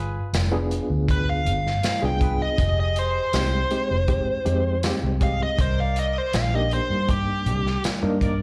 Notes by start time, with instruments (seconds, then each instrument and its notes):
Already playing: fingered electric bass G1, horn section F4 G#4 B4
0.33 fingered electric bass F1, snare, closed hi-hat, tambourine
0.52 reed electric piano B3 D4 F4 G#4
0.71 closed hi-hat
0.90 fingered electric bass D2
1.08 lead electric guitar B4, kick, closed hi-hat
1.29 lead electric guitar F5
1.45 fingered electric bass G1, closed hi-hat
1.67 snare
1.83 snare, closed hi-hat, tambourine
2.02 fingered electric bass C2, reed electric piano B3 D4 F4 G#4, lead electric guitar G5
2.20 horn section F4 G#4 B4, kick, closed hi-hat
2.42 lead electric guitar D#5
2.57 fingered electric bass F1, horn section G4 G#4 D#5, kick, closed hi-hat
2.80 lead electric guitar D#5
2.96 lead electric guitar C5, closed hi-hat
3.33 fingered electric bass C2, reed electric piano G#3 C4 D#4 G4, lead electric guitar C5, snare, closed hi-hat, tambourine
3.71 reed electric piano G#3 C4 D#4 G4, closed hi-hat
3.91 fingered electric bass F1
4.08 reed electric piano G#3 C4 D#4 G4, kick, closed hi-hat
4.45 fingered electric bass F2, reed electric piano G#3 C4 D#4 G4, closed hi-hat
4.83 reed electric piano G#3 C4 D#4 G4, snare, closed hi-hat, tambourine
5.03 fingered electric bass C2
5.20 horn section G4 G#4 D#5, lead electric guitar F5, kick, closed hi-hat
5.43 lead electric guitar D#5
5.58 fingered electric bass C2, horn section D#4 A#4 D5, lead electric guitar C5, kick, closed hi-hat
5.80 lead electric guitar F5
5.96 lead electric guitar D#5, closed hi-hat
6.18 lead electric guitar C5
6.33 fingered electric bass A#1, lead electric guitar F5, snare, closed hi-hat, tambourine
6.54 reed electric piano A#3 D4 D#4 G4, lead electric guitar D#5
6.71 lead electric guitar C5, closed hi-hat
6.90 fingered electric bass G2
7.08 lead electric guitar G4, kick, closed hi-hat
7.46 fingered electric bass C2, closed hi-hat
7.67 snare
7.84 snare, closed hi-hat, tambourine
8.03 fingered electric bass G2, reed electric piano A#3 D4 D#4 A#4
8.21 horn section D#4 A#4 D5, kick, closed hi-hat